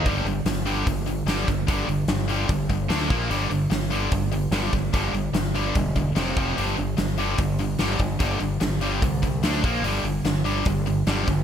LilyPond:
<<
  \new Staff \with { instrumentName = "Distorted electric guitar" } { \clef bass \time 4/4 \key g \minor \tempo 4 = 147 <g, d g>8 <g, d>8 <g, d>8 <g, d g>8 <g, d>8 <g, d>8 <g, d g>8 <g, d>8 | <g, d g>8 <g, d>8 <g, d>8 <g, d g>8 <g, d>8 <g, d>8 <d a d'>8 <bes, f bes>8 | <g, d g>8 <g, d>8 <g, d>8 <g, d g>8 <g, d>8 <g, d>8 <g, d g>8 <g, d>8 | <g, d g>8 <g, d>8 <g, d>8 <g, d g>8 <g, d>8 <g, d>8 <f, c f>8 <f, c f>8 |
<g, d g>8 <g, d>8 <g, d>8 <g, d g>8 <g, d>8 <g, d>8 <g, d g>8 <g, d>8 | <g, d g>8 <g, d>8 <g, d>8 <g, d g>8 <g, d>8 <g, d>8 <d a d'>8 <bes, f bes>8 | <g, d g>8 <g, d>8 <g, d>8 <g, d g>8 <g, d>8 <g, d>8 <g, d g>8 <g, d>8 | }
  \new Staff \with { instrumentName = "Overdriven electric guitar" } { \clef bass \time 4/4 \key g \minor <g, d g>8 <g, d>8 <g, d>8 <g, d g>8 <g, d>8 <g, d>8 <g, d g>8 <g, d>8 | <g, d g>8 <g, d>8 <g, d>8 <g, d g>8 <g, d>8 <g, d>8 <d a d'>8 <bes, f bes>8 | <g, d g>8 <g, d>8 <g, d>8 <g, d g>8 <g, d>8 <g, d>8 <g, d g>8 <g, d>8 | <g, d g>8 <g, d>8 <g, d>8 <g, d g>8 <g, d>8 <g, d>8 <f, c f>8 <f, c f>8 |
<g, d g>8 <g, d>8 <g, d>8 <g, d g>8 <g, d>8 <g, d>8 <g, d g>8 <g, d>8 | <g, d g>8 <g, d>8 <g, d>8 <g, d g>8 <g, d>8 <g, d>8 <d a d'>8 <bes, f bes>8 | <g, d g>8 <g, d>8 <g, d>8 <g, d g>8 <g, d>8 <g, d>8 <g, d g>8 <g, d>8 | }
  \new Staff \with { instrumentName = "Fingered electric bass" } { \clef bass \time 4/4 \key g \minor g,,8 g,,8 g,,4 g,,4 g,,8 g,,8 | g,,8 g,,8 g,,4 g,,4 d,8 bes,,8 | g,,8 g,,8 g,,4 g,,4 g,,8 g,,8 | g,,8 g,,8 g,,4 e,,4 f,,8 f,,8 |
g,,8 g,,8 g,,4 g,,4 g,,8 g,,8 | g,,8 g,,8 g,,4 c,4 d,8 bes,,8 | g,,8 g,,8 g,,4 g,,4 g,,8 g,,8 | }
  \new DrumStaff \with { instrumentName = "Drums" } \drummode { \time 4/4 <hho bd>8 hho8 <hho sn>8 hho8 <hho bd>8 hho8 <hho sn>8 <hho bd>8 | <hho bd>8 hho8 <hho sn>8 hho8 <hho bd>8 <hho bd>8 <hho sn>8 <hho bd>8 | hho8 hho8 <hho sn>8 hho8 <hho bd>8 hho8 <hho sn>8 <hho bd>8 | <hho bd>8 hho8 <hho sn>8 hho8 <hho bd>8 <hho bd>8 <hho sn>8 <hho bd>8 |
hho8 hho8 <hho sn>8 hho8 <hho bd>8 hho8 <hho sn>8 <hho bd>8 | <hho bd>8 hho8 <hho sn>8 hho8 <hho bd>8 <hho bd>8 <hho sn>8 <hho bd>8 | hho8 hho8 <hho sn>8 hho8 <hho bd>8 hho8 <hho sn>8 <hho bd>8 | }
>>